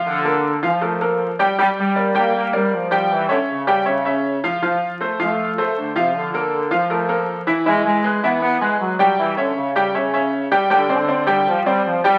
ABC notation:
X:1
M:4/4
L:1/8
Q:1/4=158
K:Bblyd
V:1 name="Grand piano"
[F,Ff] [B,AB]2 [F,Ff] [A,AB] [B,AB]2 [G,Gg] | [G,Gg]2 [B,Bd] [G,Gg]2 [B,Bd]2 [G,Gg]- | [G,Gg] [^C^ce]2 [G,Gg] [Cce] [Cce]2 [F,Ff] | [F,Ff]2 [A,Ac] [F,Ff]2 [A,Ac]2 [F,Ff]- |
[F,Ff] [B,AB]2 [F,Ff] [A,AB] [B,AB]2 [E,Ee] | [E,Ee]2 [^G,^G=B] [E,Ee]2 [G,GB]2 [=G,=Gg]- | [G,Gg] [^C^ce]2 [G,Gg] [Cce] [Cce]2 [G,Gg] | [G,Gg] [Ccd] [Ccd] [G,Gg]2 [Ccd]2 [G,Gg] |]
V:2 name="Trombone section" clef=bass
D,3 F,4 z | G, G,2 B, B, G, F,2 | E, D, ^C,2 C,3 z | F, z2 A,3 D, C, |
D,3 F,4 z | ^G, G,2 =B, B, G, ^F,2 | E, D, ^C,2 C,3 z | D, D,3 F, G, F, G, |]